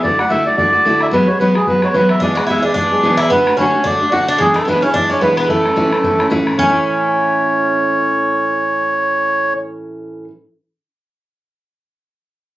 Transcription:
0.03 D3 A3 E4 F#4 D5, bodhran
0.12 bodhran
0.19 A3 E4 F#4 F#5, bodhran
0.29 D3 A3 E4 F#4 E5, bodhran
0.45 A3 E4 F#4 D5
0.57 D3 A3 E4 F#4 D5, bodhran
0.73 A3 E4 F#4
0.85 D3 A3 E4 F#4, bodhran
1.01 E5, bodhran
1.12 E2 B2 F#3 G#3 B3 F#4 B4, bodhran
1.21 bodhran
1.27 F#3 G#3 B3 F#4 C#5
1.40 E2 B2 F#3 G#3 B3 F#4 B4, bodhran
1.55 F#3 G#3 B3 F#4 G#4, bodhran
1.67 F#3 G#3 B3 F#4 B4, bodhran
1.82 F#3 G#3 B3 F#4 C#5, bodhran
1.94 E2 B2 F#3 G#3 B3 F#4 B4, bodhran
2.09 E5, bodhran
2.20 E2 B2 E3 G#3 B3 D4 G#4 D5, bodhran
2.29 bodhran
2.35 E3 G#3 B3 F#4 G#4 F#5, bodhran
2.47 E2 B2 E3 G#3 B3 E4 G#4 E5, bodhran
2.58 E4
2.62 G#3 B3 D4 G#4 D5
2.66 E3
2.74 E3 G#3 B3 D4 G#4 D5, bodhran
2.92 E3 G#3 B3 G#4
3.03 E2 B2 E3 G#3 B3 G#4, bodhran
3.17 E4 E5, bodhran
3.30 D3 A3 B3 D4 F#4 B4, bodhran
3.39 bodhran
3.47 A3 D4 F#4, bodhran
3.57 D3 A3 C#4 D4 F#4 C#5, bodhran
3.73 A3 D4 F#4
3.84 D3 A3 D4 F#4 D5, bodhran
4.00 A3 D4 F#4
4.12 D3 A3 D4 F#4 F#5, bodhran
4.28 D4 D5
4.38 E2 B2 E3 G#3 D4 E4 G#4, bodhran
4.49 bodhran
4.54 E3 G#3 A3 D4 E4 A4, bodhran
4.65 E2 B2 E3 G#3 B3 D4 E4 B4, bodhran
4.82 E3 G#3 C#4 D4 E4 C#5
4.94 E3 G#3 D4 E4 D5, bodhran
5.09 E3 G#3 C#4 D4 E4 C#5
5.21 E2 B2 E3 G#3 B3 D4 E4 B4, bodhran
5.37 B3 B4, bodhran
5.49 A2 E3 A3 C#4 E4 A4, bodhran
5.57 bodhran
5.64 A3 C#4 E4, bodhran
5.76 A2 E3 A3 C#4 E4, bodhran
5.92 A3 C#4 E4, bodhran
6.04 E3 A3 C#4 E4, bodhran
6.19 A3 C#4 E4, bodhran
6.30 A2 E3 A3 C#4 E4, bodhran
6.47 bodhran
6.54 A2 C#5
6.58 E3 C#4, bodhran
6.63 A3 C#4
6.70 E4

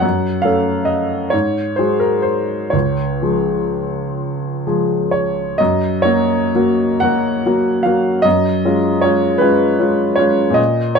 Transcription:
0.00 F#2 F#5
0.42 A3 C#4 A4 F5
0.85 D#5
1.30 G#2 C#5
1.76 F#3 G#3 G#4 C5
2.00 A#4
2.22 C5
2.70 C#2 C#5
3.22 F3 G#3 G#4
4.67 F3 G#3 G#4
5.11 C#5
5.58 F#2 D#5
6.02 F#3 A#3 F#4 C#5
6.55 F#3 A#3 F#4
7.00 F#3 A#3 F#4 F#5
7.46 F#3 A#3 F#4
7.83 F#3 A#3 F#4 F5
8.22 F#2 D#5
8.65 G#3 C#4 F4
9.01 G#3 C#4 F4 C#5
9.38 G#3 C#4 F4 B4
9.79 G#3 C#4 F4
10.16 G#3 C#4 F4 C#5
10.50 A#2 D#5
10.95 C#5

